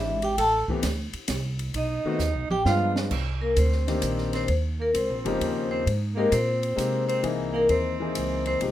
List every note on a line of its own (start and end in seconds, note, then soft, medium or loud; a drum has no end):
0.00 0.36 G#1 medium
0.00 0.16 E3 medium
0.00 0.16 G#3 medium
0.00 0.17 C4 medium
0.00 0.17 D4 medium
0.00 0.20 E4 medium
0.00 0.17 G4 medium
0.00 0.23 E5 medium
0.22 0.37 G4 medium
0.22 0.38 G5 loud
0.22 ride soft
0.37 0.66 A1 medium
0.37 0.66 A4 medium
0.37 0.58 A5 loud
0.37 kick soft
0.37 ride medium
0.68 0.82 E3 medium
0.68 0.82 A3 medium
0.68 0.82 B3 medium
0.68 0.82 C4 medium
0.68 0.83 G4 medium
0.68 muted upright bass stroke soft
0.68 kick medium
0.83 1.12 D2 loud
0.83 kick soft
0.83 snare medium
0.83 hi-hat pedal medium
0.83 ride medium
1.13 muted upright bass stroke soft
1.13 ride soft
1.28 1.73 C2 loud
1.28 kick soft
1.28 snare medium
1.28 hi-hat pedal medium
1.28 ride medium
1.59 ride soft
1.74 2.03 B1 medium
1.74 2.48 D#4 medium
1.74 2.49 D#5 medium
1.74 kick soft
1.74 ride medium
2.04 2.19 D#3 medium
2.04 2.19 A3 medium
2.04 2.19 B3 medium
2.04 2.20 C4 medium
2.04 2.19 F#4 medium
2.04 muted upright bass stroke soft
2.19 2.34 D#2 loud
2.19 snare soft
2.19 hi-hat pedal medium
2.34 2.49 B1 medium
2.50 2.64 A1 medium
2.50 2.65 G4 medium
2.50 2.66 G5 loud
2.50 mid tom medium
2.65 3.10 G2 medium
2.65 3.11 F3 medium
2.65 3.11 G#3 medium
2.65 3.11 B3 medium
2.65 3.12 D4 medium
2.65 3.12 F4 medium
2.65 2.95 F4 medium
2.65 2.85 F5 medium
2.65 snare medium
2.96 snare medium
3.11 3.56 C2 medium
3.11 kick medium
3.11 crash medium
3.41 3.55 A#3 medium
3.41 3.57 A#4 medium
3.55 4.01 D2 loud
3.55 4.29 C4 medium
3.55 4.31 C5 medium
3.55 kick soft
3.55 hi-hat pedal medium
3.55 ride medium
3.72 snare soft
3.87 4.46 D#3 medium
3.87 4.46 A#3 medium
3.87 4.46 C4 medium
3.87 4.46 D4 medium
3.87 4.46 G4 medium
3.87 snare soft
3.87 ride soft
4.02 4.47 A#1 medium
4.02 kick soft
4.02 hi-hat pedal medium
4.02 ride medium
4.18 snare soft
4.33 4.48 C4 medium
4.33 4.49 C5 loud
4.33 snare soft
4.33 ride soft
4.48 4.93 D#2 medium
4.48 kick soft
4.48 ride medium
4.80 4.93 A#3 medium
4.80 4.95 A#4 medium
4.94 5.10 C#2 medium
4.94 5.67 C4 medium
4.94 5.68 C5 medium
4.94 kick soft
4.94 hi-hat pedal medium
4.94 ride medium
5.10 5.25 A#1 medium
5.25 5.40 G1 medium
5.25 5.84 C#3 medium
5.25 5.83 F3 medium
5.25 5.83 A#3 medium
5.25 5.84 D#4 medium
5.25 5.84 G4 medium
5.25 ride soft
5.40 5.85 D#2 medium
5.40 kick soft
5.40 ride medium
5.71 5.85 C4 medium
5.71 5.86 C5 medium
5.86 6.31 G#2 medium
5.86 kick soft
5.86 ride medium
6.15 6.31 G#3 medium
6.15 6.30 A#3 medium
6.15 6.31 A#3 medium
6.15 6.31 C4 medium
6.15 6.31 D#4 medium
6.15 6.31 G4 medium
6.15 6.32 A#4 medium
6.32 6.77 A#2 loud
6.32 7.05 C4 medium
6.32 7.05 C5 medium
6.32 kick soft
6.32 hi-hat pedal medium
6.32 ride medium
6.63 ride soft
6.76 7.22 C3 medium
6.76 7.23 G#3 medium
6.76 7.22 A#3 medium
6.76 7.22 C4 medium
6.76 7.22 D#4 medium
6.76 7.24 G4 medium
6.76 kick soft
6.76 hi-hat pedal medium
6.76 ride medium
7.08 7.22 C4 medium
7.08 7.23 C5 medium
7.08 ride soft
7.23 7.68 C2 medium
7.23 7.94 E3 medium
7.23 7.94 A#3 medium
7.23 7.94 C4 medium
7.23 7.94 D#4 medium
7.23 7.94 G#4 medium
7.23 kick soft
7.23 ride medium
7.53 7.68 A#3 medium
7.53 7.70 A#4 medium
7.69 8.14 D#2 medium
7.69 8.43 C4 medium
7.69 8.43 C5 medium
7.69 kick soft
7.69 ride medium
8.00 8.58 E3 medium
8.00 8.58 A#3 medium
8.00 8.59 C4 medium
8.00 8.59 D#4 medium
8.00 8.59 G#4 medium
8.15 8.60 C#2 medium
8.15 kick soft
8.15 hi-hat pedal medium
8.15 ride medium
8.46 8.61 C4 medium
8.46 8.56 C5 medium
8.46 ride soft
8.61 8.71 C2 medium
8.61 8.71 F3 medium
8.61 8.71 G#3 medium
8.61 8.71 C4 medium
8.61 8.71 D#4 medium
8.61 8.71 G4 medium
8.61 kick soft
8.61 ride medium